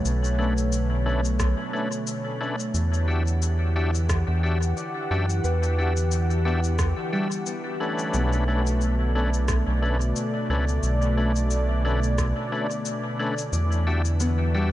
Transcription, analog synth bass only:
0.05 1.55 B1 medium
2.74 4.24 E2 loud
4.28 4.74 E2 medium
5.11 5.41 F#2 medium
5.44 6.94 E2 loud
8.14 9.64 B1 loud
9.67 10.13 B1 medium
10.50 10.80 C#2 medium
10.83 12.33 B1 medium
13.52 14.72 E2 loud

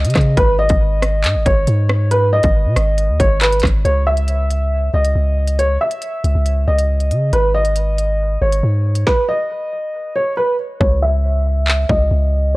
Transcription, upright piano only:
0.00 0.33 D#5 medium
0.37 0.54 B4 medium
0.59 1.42 D#5 medium
1.46 2.07 C#5 medium
2.11 2.27 B4 medium
2.33 3.16 D#5 medium
3.20 3.36 C#5 medium
3.41 3.58 B4 medium
3.85 4.01 C#5 medium
4.07 4.90 E5 medium
4.94 5.55 D#5 medium
5.59 5.75 C#5 medium
5.81 6.64 E5 medium
6.68 7.29 D#5 medium
7.33 7.49 B4 medium
7.54 8.37 D#5 medium
8.42 9.03 C#5 medium
9.07 9.23 B4 medium
9.29 10.12 D#5 medium
10.16 10.32 C#5 medium
10.37 10.53 B4 medium
10.80 10.97 C#5 medium
11.02 11.85 E5 medium
11.90 12.51 D#5 medium

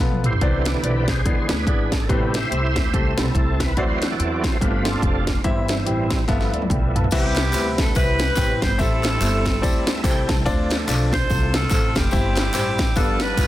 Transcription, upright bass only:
0.00 0.34 B1 medium
0.41 0.77 C2 medium
0.82 1.18 B1 medium
1.25 1.46 E2 medium
1.49 1.64 D2 medium
1.66 2.02 G#1 medium
2.09 2.45 A1 medium
2.51 2.72 C2 medium
2.76 2.90 D2 medium
2.93 3.14 C2 medium
3.18 3.33 B1 medium
3.35 3.70 C2 loud
3.77 4.13 D2 medium
4.19 4.55 E2 medium
4.62 4.97 G1 medium
5.02 5.38 F1 medium
5.44 5.80 G1 loud
5.87 6.22 A1 medium
6.29 6.50 G1 medium
6.52 6.67 D2 medium
6.70 7.06 B1 medium
7.12 7.48 C2 loud
7.53 7.89 D2 medium
7.95 8.31 C2 loud
8.37 8.58 A1 loud
8.62 8.77 G1 loud
8.79 9.15 A1 loud
9.21 9.56 G1 loud
9.63 9.98 D2 medium
10.04 10.25 C2 medium
10.29 10.43 C2 loud
10.46 10.82 D2 loud
10.88 11.23 B1 loud
11.30 11.65 C2 loud
11.71 11.92 A1 loud
11.96 12.10 F1 medium
12.13 12.48 G1 loud
12.54 12.90 A1 medium
12.96 13.31 G1 medium
13.37 13.47 A1 medium

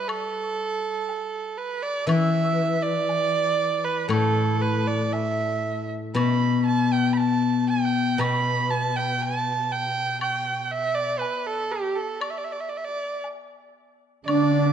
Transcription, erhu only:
0.08 1.59 A4 medium
1.58 1.84 B4 medium
1.82 2.08 D5 medium
2.08 2.83 E5 medium
2.82 3.85 D5 medium
3.84 4.09 B4 medium
4.10 4.63 A4 medium
4.61 4.89 B4 medium
4.87 5.14 D5 medium
5.13 5.90 E5 medium
6.15 6.63 B5 medium
6.66 6.94 A5 medium
6.92 7.14 G5 medium
7.13 7.18 B5 medium
7.17 7.69 A5 medium
7.69 8.21 G5 medium
8.19 8.72 B5 medium
8.71 8.98 A5 medium
8.96 9.24 G5 medium
9.22 9.73 A5 medium
9.72 10.20 G5 medium
10.21 10.65 G5 medium
10.65 10.73 G5 medium
10.71 10.96 E5 medium
10.95 11.20 D5 medium
11.19 11.48 B4 medium
11.46 11.73 A4 medium
11.71 11.97 G4 medium
11.95 12.22 A4 medium
12.21 12.31 D5 medium
12.30 12.39 E5 medium
12.38 12.45 D5 medium
12.44 12.53 E5 medium
12.52 12.62 D5 medium
12.60 12.71 E5 medium
12.69 12.78 D5 medium
12.77 12.86 E5 medium
12.84 13.23 D5 medium
14.26 14.73 D5 medium

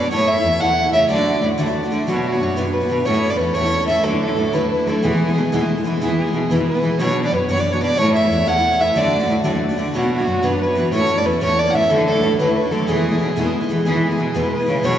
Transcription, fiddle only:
0.00 0.11 D5 loud
0.11 0.29 C#5 loud
0.28 0.62 E5 loud
0.61 0.92 F#5 loud
0.93 1.08 E5 loud
1.09 1.44 D5 loud
2.08 2.23 F#4 medium
2.25 2.58 F#4 medium
2.56 2.72 B4 medium
2.72 3.07 B4 medium
3.05 3.31 C#5 loud
3.30 3.39 D5 loud
3.37 3.56 B4 loud
3.54 3.87 C#5 loud
3.88 4.05 E5 loud
4.04 4.20 A4 loud
4.21 4.55 A4 loud
4.53 4.70 B4 loud
4.71 4.89 B4 medium
4.88 5.06 A4 medium
5.04 5.69 G#4 medium
6.02 6.17 G#4 medium
6.18 6.52 G#4 medium
6.51 6.67 B4 loud
6.68 6.98 B4 medium
7.00 7.23 C#5 loud
7.25 7.35 D5 loud
7.33 7.49 B4 medium
7.50 7.61 C#5 loud
7.60 7.74 D5 medium
7.72 7.82 C#5 loud
7.83 8.00 D5 loud
7.98 8.14 C#5 loud
8.15 8.49 E5 loud
8.48 8.82 F#5 loud
8.80 8.98 E5 loud
8.97 9.33 D5 loud
9.95 10.10 F#4 medium
10.11 10.45 F#4 medium
10.44 10.60 B4 loud
10.61 10.90 B4 medium
10.93 11.19 C#5 loud
11.18 11.27 D5 loud
11.26 11.41 B4 medium
11.42 11.60 C#5 loud
11.59 11.72 D5 loud
11.70 11.92 E5 loud
11.70 11.76 F#5 medium
11.90 12.06 A4 loud
12.07 12.37 A4 loud
12.39 12.54 B4 loud
12.55 12.73 B4 medium
12.71 12.89 A4 medium
12.88 13.53 G#4 loud
13.86 14.01 G#4 medium
14.03 14.37 G#4 medium
14.36 14.51 B4 loud
14.52 14.86 B4 medium
14.85 14.99 C#5 loud

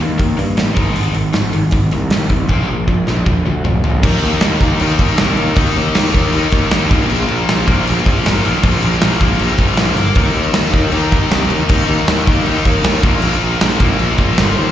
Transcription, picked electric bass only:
0.00 0.16 D#2 medium
0.20 0.36 D#2 medium
0.38 0.55 G2 medium
0.57 0.74 A1 medium
0.77 0.94 G#1 medium
0.97 1.13 G#1 medium
1.15 1.32 G#1 medium
1.35 1.51 G#1 medium
1.55 1.71 G#1 medium
1.73 1.90 G#1 medium
1.94 2.10 C2 medium
2.12 2.28 D#2 medium
2.30 2.47 C2 medium
2.49 2.66 A#1 medium
2.71 2.87 A#1 medium
2.88 3.05 A#1 medium
3.08 3.24 A#1 medium
3.27 3.44 A#1 medium
3.46 3.62 D2 medium
3.64 3.81 F1 medium
3.85 4.01 A#1 medium
4.04 4.16 D#2 medium
4.22 4.35 D#2 medium
4.42 4.55 D#2 medium
4.61 4.73 D#2 medium
4.81 5.06 D#2 medium
5.20 5.32 C2 medium
5.38 5.50 D#2 medium
5.57 5.69 D#2 loud
5.76 5.89 D#2 medium
5.96 6.08 D#2 medium
6.15 6.27 D#2 medium
6.34 6.46 D#2 medium
6.52 6.65 D#2 loud
6.74 6.86 D#2 medium
6.91 7.04 A#1 medium
7.11 7.23 A#1 loud
7.31 7.43 A#1 medium
7.49 7.62 A#1 medium
7.68 7.80 A#1 medium
7.89 8.13 A#1 medium
8.26 8.38 G1 medium
8.46 8.58 A#1 medium
8.64 8.76 A#1 medium
8.84 8.96 A#1 medium
9.03 9.15 A#1 medium
9.21 9.33 A#1 medium
9.41 9.53 A#1 medium
9.59 9.71 A#1 loud
9.78 9.90 A#1 medium
9.96 10.09 G1 medium
10.16 10.29 D#2 loud
10.34 10.47 D#2 medium
10.54 10.67 D#2 medium
10.73 10.86 D#2 medium
10.92 11.18 D#2 medium
11.31 11.44 C2 medium
11.51 11.63 D#2 medium
11.70 11.82 D#2 loud
11.88 12.01 D#2 medium
12.09 12.21 D#2 medium
12.28 12.40 D#2 medium
12.47 12.59 D#2 medium
12.65 12.78 D#2 loud
12.84 12.97 D#2 medium
13.03 13.16 A#1 medium
13.24 13.36 A#1 loud
13.43 13.55 A#1 medium
13.62 13.74 A#1 medium
13.80 13.93 A#1 medium
14.00 14.25 A#1 loud
14.38 14.50 G1 medium
14.58 14.70 D#2 medium

